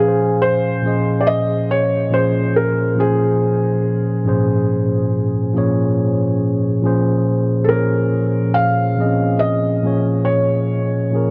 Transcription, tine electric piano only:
0.00 0.68 A#2 medium
0.00 0.68 F3 medium
0.00 0.69 C#4 medium
0.00 0.70 G#4 medium
0.00 0.08 B4 medium
0.00 0.24 F5 soft
0.00 0.23 G#5 medium
0.08 0.74 C5 medium
0.82 1.83 A#2 medium
0.82 1.84 F3 medium
0.82 1.85 C#4 medium
0.86 1.85 G#4 medium
0.86 1.86 D#5 medium
2.10 2.94 A#2 medium
2.10 2.95 F3 medium
2.10 2.97 C#4 medium
2.10 2.98 G#4 medium
2.15 2.99 C5 medium
2.95 4.04 A#2 medium
2.95 4.05 F3 medium
2.95 4.05 C#4 medium
2.95 4.06 G#4 medium
3.00 4.06 C5 medium
4.24 4.34 G#2 medium
4.24 5.27 F3 medium
4.24 5.27 C#4 medium
4.24 5.28 G#4 medium
4.29 5.29 A#2 medium
4.29 5.28 C5 medium
5.53 6.55 A#2 medium
5.53 6.55 F3 medium
5.53 6.56 C#4 medium
5.53 6.57 G#4 medium
5.58 6.57 C#5 medium
6.82 7.53 A#2 medium
6.82 7.54 F3 medium
6.82 7.54 C#4 medium
6.82 7.55 G#4 medium
6.86 7.55 C5 medium
7.68 8.69 A#2 medium
7.68 8.70 F3 medium
7.68 8.71 C#4 medium
7.68 8.71 G#4 medium
7.72 8.72 C#5 medium
8.97 9.81 A#2 medium
8.97 9.82 F3 medium
8.97 9.07 C4 medium
8.97 9.84 G#4 medium
9.01 9.85 D#5 medium
9.06 9.83 C#4 medium
9.82 10.90 A#2 medium
9.82 10.91 F3 medium
9.82 10.91 C#4 medium
9.82 10.92 G#4 medium
9.87 10.93 C#5 medium
11.11 11.31 A#2 medium
11.11 11.31 F3 medium
11.11 11.31 C#4 medium
11.11 11.31 G#4 medium
11.16 11.31 A#4 medium

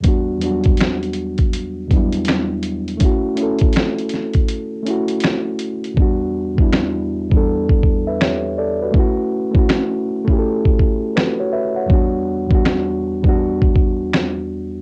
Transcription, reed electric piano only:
0.01 0.33 E2 medium
0.01 0.34 G3 medium
0.01 0.35 B3 medium
0.07 0.36 D4 medium
0.07 0.37 F#4 medium
0.38 1.53 E2 medium
0.38 0.49 F#3 soft
0.42 1.55 B3 medium
0.42 1.56 D4 medium
0.42 1.57 F#4 medium
0.47 1.57 G3 medium
1.88 2.76 E2 medium
1.88 1.98 F#3 medium
1.92 2.78 B3 medium
1.92 2.79 D4 medium
1.92 2.80 E4 medium
1.96 2.80 G3 medium
2.97 3.30 A3 medium
2.97 3.31 C#4 medium
3.03 3.32 E4 medium
3.03 3.33 F#4 medium
3.35 4.49 A3 medium
3.35 4.51 C#4 medium
3.40 4.52 E4 medium
3.40 4.53 A4 medium
4.82 5.71 A3 medium
4.82 5.73 C#4 medium
4.88 5.74 E4 medium
4.88 5.75 F#4 medium
5.94 6.39 E2 medium
5.94 6.40 G3 medium
5.98 6.41 B3 medium
5.98 6.42 D4 medium
5.98 6.43 F#4 medium
6.55 7.08 E2 medium
6.55 7.09 G3 medium
6.55 7.10 B3 medium
6.60 7.10 D4 medium
6.60 7.11 E4 medium
7.29 8.43 E2 medium
7.29 8.44 G3 medium
7.29 8.44 B3 medium
7.35 8.46 D4 medium
7.35 7.85 A4 medium
8.07 8.20 B4 medium
8.07 8.19 E5 medium
8.21 8.56 G4 medium
8.21 8.55 C#5 medium
8.58 8.80 A4 medium
8.58 8.80 D5 medium
8.82 8.98 F#4 medium
8.82 9.16 B4 soft
8.91 9.36 A3 medium
8.91 9.37 C#4 medium
8.97 9.39 E4 medium
8.97 9.40 F#4 medium
9.51 10.04 A3 medium
9.51 10.05 C#4 medium
9.56 10.07 E4 medium
9.56 10.08 F#4 medium
10.25 11.39 A3 medium
10.25 11.40 C#4 medium
10.30 11.41 E4 medium
10.30 10.35 G4 medium
10.39 11.21 A4 medium
11.16 11.38 F#4 medium
11.16 11.38 B4 medium
11.40 11.53 F#4 medium
11.40 11.52 C#5 medium
11.53 11.75 B4 medium
11.53 11.75 E5 medium
11.76 12.12 C#5 medium
11.76 12.11 F#5 medium
11.86 12.32 E2 medium
11.86 12.33 G3 medium
11.86 12.33 B3 medium
11.92 12.35 D4 medium
11.92 12.35 F#4 medium
12.47 13.00 E2 medium
12.47 13.01 G3 medium
12.47 13.02 B3 medium
12.53 13.03 D4 medium
12.53 13.04 F#4 medium
13.21 14.35 E2 medium
13.21 14.36 G3 medium
13.21 14.37 B3 medium
13.27 14.38 D4 medium
13.27 14.39 F#4 loud

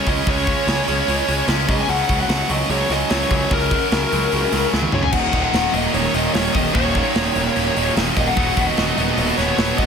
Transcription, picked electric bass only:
0.07 0.20 C#2 loud
0.27 0.52 C#2 medium
0.67 0.80 C#2 medium
0.88 1.01 C#2 loud
1.08 1.21 C#2 medium
1.28 1.41 C#2 medium
1.48 1.68 C#2 loud
1.69 1.81 C#2 loud
1.88 2.01 C#2 loud
2.09 2.22 C#2 loud
2.29 2.42 C#2 medium
2.49 2.62 C#2 loud
2.69 2.82 C#2 medium
2.89 3.02 C#2 medium
3.11 3.23 C#2 medium
3.31 3.43 C#2 loud
3.51 3.76 C#2 loud
3.92 4.04 C#2 medium
4.12 4.25 C#2 medium
4.33 4.45 C#2 medium
4.52 4.65 C#2 medium
4.73 4.85 C#2 medium
4.93 5.06 C#2 loud
5.13 5.26 D#1 medium
5.33 5.46 D#1 medium
5.53 5.66 D#1 medium
5.74 5.86 D#1 medium
5.94 6.06 D#1 loud
6.14 6.27 D#1 medium
6.35 6.47 D#1 medium
6.55 6.67 D#1 loud
6.75 7.00 D#1 medium
7.16 7.28 D#1 medium
7.35 7.48 D#1 loud
7.56 7.69 D#1 medium
7.77 7.89 D#1 medium
7.96 8.09 D#1 medium
8.17 8.29 D#1 loud
8.37 8.50 D#1 medium
8.57 8.70 D#1 medium
8.78 8.90 D#1 loud
8.98 9.10 D#1 loud
9.17 9.30 D#1 loud
9.38 9.50 D#1 medium
9.58 9.71 D#1 medium
9.78 9.86 D#1 loud

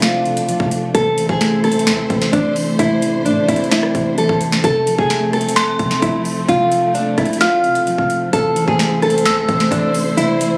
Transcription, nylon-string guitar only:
0.03 0.91 F4 medium
0.95 1.27 A4 loud
1.30 1.62 G#4 medium
1.64 2.29 A4 medium
2.33 2.52 D4 medium
2.79 3.23 E4 loud
3.25 3.45 D4 medium
3.49 3.68 E4 medium
3.72 4.15 E4 medium
4.18 4.37 A4 medium
4.64 4.97 A4 loud
4.98 5.31 G#4 medium
5.34 5.99 A4 medium
6.02 6.22 E4 medium
6.49 6.92 F4 loud
6.94 7.14 D4 medium
7.18 7.37 E4 medium
7.41 8.29 F4 medium
8.33 8.66 A4 loud
8.68 9.00 G#4 medium
9.03 9.68 A4 medium
9.71 9.91 D4 medium
10.17 10.58 E4 loud

